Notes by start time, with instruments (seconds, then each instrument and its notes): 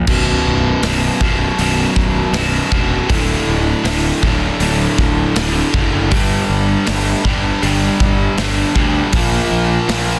0.07 fingered electric bass B0, overdriven electric guitar B1 F#2 B2, kick, crash
0.45 fingered electric bass B0
0.83 fingered electric bass B0, overdriven electric guitar B1 F#2 B2, snare, open hi-hat
1.21 fingered electric bass B0, overdriven electric guitar B1 F#2 B2, kick
1.58 fingered electric bass B0, overdriven electric guitar B1 F#2 B2, open hi-hat
1.96 fingered electric bass B0, kick
2.33 fingered electric bass B0, overdriven electric guitar B1 F#2 B2, snare, open hi-hat
2.71 fingered electric bass E1, overdriven electric guitar B1 F#2 B2, kick
3.08 fingered electric bass D1, overdriven electric guitar D2 A2 D3, kick, open hi-hat
3.47 fingered electric bass D1
3.84 fingered electric bass D1, overdriven electric guitar D2 A2 D3, snare, open hi-hat
4.22 fingered electric bass D1, overdriven electric guitar D2 A2 D3, kick
4.60 fingered electric bass D1, overdriven electric guitar D2 A2 D3, open hi-hat
4.98 fingered electric bass D1, kick, snare
5.35 fingered electric bass D1, overdriven electric guitar D2 A2 D3, snare, open hi-hat
5.72 fingered electric bass F#1, overdriven electric guitar D2 A2 D3, kick
6.11 fingered electric bass G1, overdriven electric guitar G2 D3 G3, kick, open hi-hat
6.49 fingered electric bass G1
6.86 fingered electric bass G1, overdriven electric guitar G2 D3 G3, snare, open hi-hat
7.24 fingered electric bass G1, overdriven electric guitar G2 D3 G3, kick
7.62 fingered electric bass G1, overdriven electric guitar G2 D3 G3, open hi-hat
8.00 fingered electric bass G1, kick
8.37 fingered electric bass G1, overdriven electric guitar G2 D3 G3, snare, open hi-hat
8.75 fingered electric bass D2, overdriven electric guitar G2 D3 G3, kick
9.13 fingered electric bass A#1, overdriven electric guitar A#2 F3 A#3, kick, open hi-hat
9.51 fingered electric bass A#1
9.88 fingered electric bass A#1, overdriven electric guitar A#2 F3 A#3, snare, open hi-hat